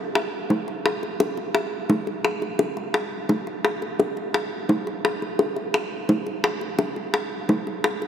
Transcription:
0.15 high bongo
0.50 high bongo, low bongo
0.68 high bongo
0.86 high bongo
1.03 high bongo
1.20 high bongo
1.37 high bongo
1.55 high bongo
1.90 high bongo, low bongo
2.07 high bongo
2.25 high bongo
2.42 high bongo
2.59 high bongo
2.77 high bongo
2.94 high bongo
3.29 high bongo, low bongo
3.47 high bongo
3.65 high bongo
3.82 high bongo
4.00 high bongo
4.17 high bongo
4.34 high bongo
4.69 high bongo, low bongo
4.87 high bongo
5.05 high bongo
5.22 high bongo
5.39 high bongo
5.56 high bongo
5.74 high bongo
6.09 high bongo, low bongo
6.26 high bongo
6.44 high bongo
6.61 high bongo
6.79 high bongo
6.96 high bongo
7.14 high bongo
7.49 high bongo, low bongo
7.67 high bongo
7.84 high bongo
8.02 high bongo

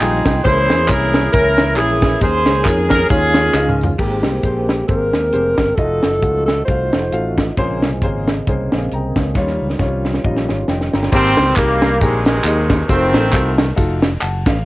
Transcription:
Already playing: F3 G#3 C4 D#4 G#4 G5
0.01 A#1 G3 D#4 F4 G#4, clap, ride, tambourine
0.26 C2, kick, snare, ride, tambourine
0.45 C#2 C#3 E3 G#3 A#3 C#4 E4 G#4 A#4 C5, kick, ride, tambourine
0.70 E2, snare, ride, tambourine
0.88 C2 G#3 C#4 E4 G#4 A#4, kick, clap, ride, tambourine
1.14 snare, ride, tambourine
1.33 C#2 G#3 C#4 E4 G#4 A#4, kick, ride, tambourine
1.57 snare, ride, tambourine
1.76 A#1 G#3 C#4 E4 G#4 A#4, clap, ride, tambourine
2.02 kick, snare, ride, tambourine
2.21 D#2 D#3 G#3 C#4 D#4 G#4 A#4 C5, kick, ride, tambourine
2.46 C#2, snare, ride, tambourine
2.65 F2 G#3 C#4 D#4 A#4, kick, clap, ride, tambourine
2.90 A#4, kick, snare, ride, tambourine
3.09 D#2 D#3 G#3 C#4 D#4 F4 G#4 C#5, kick, ride, tambourine
3.34 snare, ride, tambourine
3.53 C#2 G#3 D#4 F4 D#5, snare, clap, tambourine
3.69 mid tom
3.81 floor tom, tambourine
3.98 G#1 G#2 G#3 A#3 C4 G4 A#4, kick, crash
4.23 C2, snare, closed hi-hat
4.43 A#1 G#3 C4 G4 C5, kick, closed hi-hat
4.69 snare, closed hi-hat
4.88 G#1 G#3 C4 G4 A#4 C5, kick, closed hi-hat
5.13 D#2, snare, closed hi-hat
5.33 F1 G#3 C4 G4 C5, closed hi-hat
5.58 G1, kick, snare, closed hi-hat
5.75 F1 F3 A3 D#4 F4 F#4 A4 D#5, kick, closed hi-hat
6.03 F#1, snare, closed hi-hat
6.22 C#2 A3 F4 F#4 F#5, kick, closed hi-hat
6.46 A4, snare, closed hi-hat
6.65 C2 A3 F4 F#4 C5 F5, kick, closed hi-hat
6.92 F1, snare, closed hi-hat
7.12 A1 A3 F4 F#4 F5, closed hi-hat
7.38 kick, snare, closed hi-hat
7.57 A#1 A#2 C#3 G#3 A#3 C4 C#4 G#4 C5, kick, closed hi-hat
7.82 C2, snare, closed hi-hat
8.02 G#1 A#3 C#4 G#4 C5, kick, closed hi-hat
8.28 snare, closed hi-hat
8.47 C2 A#3 C#4 G#4 C5, kick, closed hi-hat
8.72 A#1 F5 G#5, snare, closed hi-hat
8.91 C2 G5 A#5, closed hi-hat
9.16 C#2 C#5 F5, kick, snare, closed hi-hat
9.34 D#2 D#3 F3 G3 C#4 D#4 F4 C#5, kick, snare
9.47 snare
9.62 C#2
9.70 snare
9.79 C2 G3 D#4 F4 C#5, kick, snare
10.05 snare
10.14 snare
10.25 A#1 G3 D#4 F4 D#5, kick
10.37 snare
10.49 G#1 C#5 F5, snare
10.68 F1 D#5 G5, snare
10.81 snare
10.93 G1 G5 A#5, snare
11.03 snare
11.12 G#1 G#2 D#3 G3 A#3 C4 D#4 G4 G#4 C5, kick, crash, tambourine
11.37 C#2, snare, ride, tambourine
11.56 C2 D#3 G3 A#3 D#4 G4 G#4 A#4, kick, clap, ride, tambourine
11.82 snare, ride, tambourine
12.01 A#1 C3 D#3 G#3 A#3 D#4 G4 G#4 A#4, kick, ride, tambourine
12.25 C3 D#3 G#3, snare, ride, tambourine
12.44 D#2 A#3 D#4 G4 G#4 D#5, clap, ride, tambourine
12.70 kick, snare, ride, tambourine
12.89 F1 D#3 A3 C4 D#4 F4 F#4 C5, kick, ride, tambourine
13.14 A1, snare, ride, tambourine
13.33 C2 A3 D#4 F4 F#4 A4, kick, clap, ride, tambourine
13.58 snare, ride, tambourine
13.76 F1 A3 D#4 F4 F#4 A4, kick, ride, tambourine
14.02 snare, ride, tambourine
14.20 F#1 F#5 A5, clap, ride, tambourine
14.46 A1 F5, kick, snare, ride, tambourine

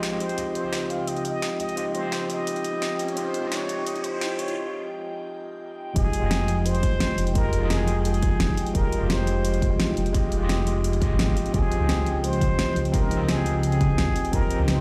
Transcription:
Already playing: G#1 F3 G#3 D#4 F4 G4 D#5 G5
0.03 snare, closed hi-hat
0.10 C4 F4 G4 D#5
0.20 F3 G#3 C5, closed hi-hat
0.29 closed hi-hat
0.36 C#2 C4 F4 G4 D#5, closed hi-hat, riser
0.55 C5, closed hi-hat
0.61 C#2 C4 F4
0.66 G4 D#5
0.73 snare, closed hi-hat
0.90 F5, closed hi-hat
1.08 D#5, closed hi-hat
1.16 closed hi-hat
1.25 D#5, closed hi-hat
1.42 snare, closed hi-hat
1.60 C#2 D#5, closed hi-hat
1.69 closed hi-hat
1.76 C4 F4 G4 D#5, closed hi-hat
1.95 C5, closed hi-hat
2.00 C#2 C4 F4
2.05 G4 D#5
2.12 snare, closed hi-hat
2.30 D#5, closed hi-hat
2.47 closed hi-hat
2.56 closed hi-hat
2.64 closed hi-hat
2.82 C#2, snare, closed hi-hat
2.99 closed hi-hat
3.08 C#5, closed hi-hat
3.15 C#2 C4 F4 G4 C5 D#5, closed hi-hat
3.34 closed hi-hat
3.40 C#2 C3 F4
3.45 G4 D#5
3.52 C#5, snare, closed hi-hat
3.69 closed hi-hat
3.87 D#5, closed hi-hat
3.96 closed hi-hat
4.04 C5, closed hi-hat
4.21 snare, closed hi-hat
4.39 C#2 C#5, closed hi-hat
4.48 closed hi-hat
5.94 F1 F3 G#3 D#4 F4 G4 G#4 D#5 G5, kick, closed hi-hat
6.13 closed hi-hat
6.19 F1 G#3 F4
6.24 D#5 G5
6.31 snare, closed hi-hat
6.48 closed hi-hat
6.66 C5, closed hi-hat
6.75 closed hi-hat
6.83 kick, closed hi-hat
7.00 snare, closed hi-hat
7.18 F1, closed hi-hat
7.27 closed hi-hat
7.34 G#3 F4 G4 A#4 D#5, kick, closed hi-hat
7.53 closed hi-hat
7.58 F1 G#3 F4
7.63 D#5 G5
7.70 G#4, snare, closed hi-hat
7.88 closed hi-hat
8.05 G#4, closed hi-hat
8.14 closed hi-hat
8.22 kick, closed hi-hat
8.40 F1, snare, closed hi-hat
8.49 kick
8.57 closed hi-hat
8.66 closed hi-hat
8.73 F1 G#3 F4 G4 A#4 D#5, kick, closed hi-hat
8.92 closed hi-hat
8.98 F1 G#3 F4
9.03 G4 D#5
9.10 C5, snare, closed hi-hat
9.27 closed hi-hat
9.45 closed hi-hat
9.54 closed hi-hat
9.62 kick, closed hi-hat
9.80 snare, closed hi-hat
9.97 F1, closed hi-hat
10.06 closed hi-hat
10.13 G#3 F4 G4 D#5, kick, closed hi-hat
10.32 closed hi-hat
10.38 F1 G#3 F4
10.42 G4 D#5
10.49 snare, closed hi-hat
10.67 closed hi-hat
10.84 closed hi-hat
10.93 closed hi-hat
11.00 G#1 G#3 F4 G4 D#5, kick, closed hi-hat
11.19 snare, closed hi-hat
11.26 C4 F4 G4 D#5, kick
11.37 C4 D#4 G5, closed hi-hat
11.46 closed hi-hat
11.52 C#2 C4 F4 G4 G#4 D#5, kick, closed hi-hat
11.72 closed hi-hat
11.77 C#2 C4 F4
11.82 D#5 G5
11.89 snare, closed hi-hat
12.06 closed hi-hat
12.24 C5, closed hi-hat
12.33 closed hi-hat
12.41 kick, closed hi-hat
12.59 snare, closed hi-hat
12.76 C#2, closed hi-hat
12.85 C5, closed hi-hat
12.92 C4 F4 G4 A#4 D#5, kick, closed hi-hat
13.11 closed hi-hat
13.17 C#2 C4 F4
13.21 D#5 G5
13.29 G#4, snare, closed hi-hat
13.46 closed hi-hat
13.63 G#4, closed hi-hat
13.72 closed hi-hat
13.81 kick, closed hi-hat
13.98 C#2, snare, closed hi-hat
14.07 kick
14.16 closed hi-hat
14.25 closed hi-hat
14.31 C#2 C4 F4 G4 A#4 D#5, kick, closed hi-hat
14.51 closed hi-hat
14.56 C#2 C4 F4
14.61 G4 D#5
14.68 C5, snare, closed hi-hat

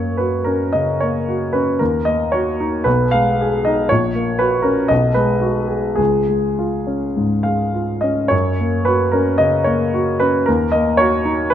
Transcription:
Already playing: F#2 A#3 C#5
0.17 F#4 B4
0.44 C#4 A#4
0.73 C#3 D#5
1.00 A#3 C#5
1.29 F#4
1.53 C#4 B4
1.79 D#2 A#4
2.05 A#3 D#5
2.32 F#4 C#5
2.60 D#4
2.84 B1 B4
3.11 G#3 F5
3.41 G#4
3.65 D#4 D#5
3.89 A#1 C#5
4.15 A#3
4.39 F#4 B4
4.62 C#4 A#4
4.88 B1 D#5
5.14 G#3 B4
5.41 F#4
5.68 G#4
5.96 C#2 G#4
6.28 G#3
6.59 F4
6.87 C#4
7.16 G#2
7.43 G#3 F5
7.74 F4
8.01 C#4 D#5
8.28 F#2 C#5
8.60 A#3
8.85 F#4 B4
9.12 C#4 A#4
9.38 C#3 D#5
9.64 A#3 C#5
9.94 F#4
10.20 C#4 B4
10.46 D#2 A#4
10.72 A#3 D#5
10.97 F#4 C#5
11.25 D#4
11.50 B4

